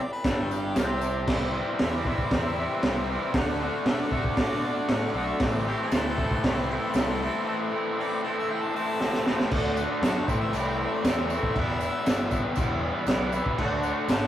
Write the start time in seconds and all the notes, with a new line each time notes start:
Already playing: E4 G4 A4
0.02 D5
0.12 B4
0.24 G1 G2 G3 A4, kick, snare, tambourine, crash
0.51 G4, tambourine
0.75 C2 C3 C4, snare, tambourine, crash
1.01 tambourine
1.26 C2 C3 E3 G3 C4 E4 G4, kick, snare, crash
1.30 E4 C5
1.54 C3 E3 G3 C4 E4
1.79 E2 C3 E3 G3 C4 E5, snare, open hi-hat
1.83 E4
1.97 D5
2.05 C3 E3 G3 C4 E4, kick
2.10 E5
2.18 kick
2.23 D5
2.31 E2 C3 E3 G3 C4, kick, snare, open hi-hat
2.35 E4 E5
2.58 C3 E3 G3 C4 E4
2.83 C2 C3 E3 G3 C4 E4, snare, open hi-hat
3.09 C3 E3 G3 C4 E4
3.34 D2 D3 A3 D4 F#4 A4 D5, kick, snare, open hi-hat
3.60 D3 A3 D4 F#4
3.85 B2 D3 A3 D4 F#4, snare, open hi-hat
3.90 E5
3.99 D5
4.11 C3 D3 A3 D4 F#4 E5, kick
4.24 D5, kick
4.37 B2 D3 A3 D4 F#4 D5, kick, snare, open hi-hat
4.63 D3 A3 D4 F#4
4.88 A2 D3 A3 D4 F#4, snare, open hi-hat
5.14 B1 D3 A3 D4 F#4 E5
5.38 A1 A2 E3 A3 C4 E4 A4 C5 D5, kick, snare, open hi-hat
5.43 E4
5.65 A2 E3 A3 C4 E4 G4
5.82 A4
5.91 D2 A2 E3 A3 C4 E4, snare, open hi-hat, tambourine
6.18 A2 E3 A3 C4 E4, kick
6.31 kick
6.43 C2 A2 E3 A3 C4 E4, kick, snare, open hi-hat
6.69 A2 E3 A3 C4 E4 A4
6.94 C2 A2 E3 A3 C4 E4, snare, open hi-hat, tambourine
7.21 A2 E3 A3 C4 E4
7.46 A2 E3 A3 C4 E4
7.72 A2 E3 A3 C4 E4
7.98 A2 E3 A3 C4 E4 D5
8.23 A2 E3 A3 C4 E4 A4
8.38 E5
8.48 A2 E3 A3 C4 E4 G5
8.62 A5
8.74 A2 E3 A3 C4 E4 A5
8.99 A2 E3 A3 C4 E4, snare
9.13 snare
9.26 A2 E3 A3 C4 E4, snare
9.40 snare
9.50 D2 D3 A3 D4 F#4 A4 D5, kick, crash
9.76 D4 F#4, tambourine
9.81 A3
10.02 F#2 D3 A3 D4 A5, snare, tambourine, crash
10.06 F#4
10.23 A4 C5 E5
10.27 A1 E3 A3 C4 E4 G5, kick, tambourine
10.31 A2
10.40 E5
10.53 C2 A2 E3 A3 C4 D5, tambourine, crash
10.58 E4
10.68 G5
10.78 C4 E4 E5
10.83 A3
10.94 D5
11.03 E2 E3 A3 C4, snare, tambourine, crash
11.07 E4 A4
11.18 E5
11.29 C4 E4 E5, tambourine
11.34 A3
11.43 kick
11.54 E1 E2 B2 E3 G3 B3 G4 B4, kick, crash
11.59 E4 E5
11.81 G3 B3 E4, tambourine
11.85 E3
12.05 G1 E2 B2 E3 G3 B3, snare, tambourine, crash
12.09 E4
12.31 G3 B3 E4, kick, tambourine
12.35 E3
12.55 E1 E2 B2 E3 G3, kick, tambourine, crash
12.60 B3 E4
12.82 G3 B3 E4
12.87 E3
13.07 B1 E3 G3 B3, snare, tambourine, crash
13.11 E4
13.32 G3 B3 E4, tambourine
13.36 E3
13.46 kick
13.58 D2 D3 A3 D4 A4 D5 F#5, kick, crash
13.62 F#4
13.83 D4 F#4, tambourine
13.87 A3
14.07 G#1 D3 A3 D4, snare, tambourine, crash
14.11 F#4 A5